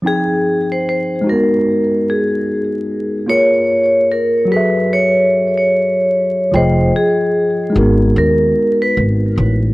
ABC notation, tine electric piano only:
X:1
M:4/4
L:1/8
Q:"Swing 16ths" 1/4=74
K:Ablyd
V:1 name="Tine electric piano"
[F,CEAg]3 [A,_CE_GB]4- [A,CEGB] | [B,FAB_d]3 [_G,_GA=A_f]4- [G,G_A=Af] | [F,FAeg]3 [A,_CE_GB]4- [A,CEGB] |]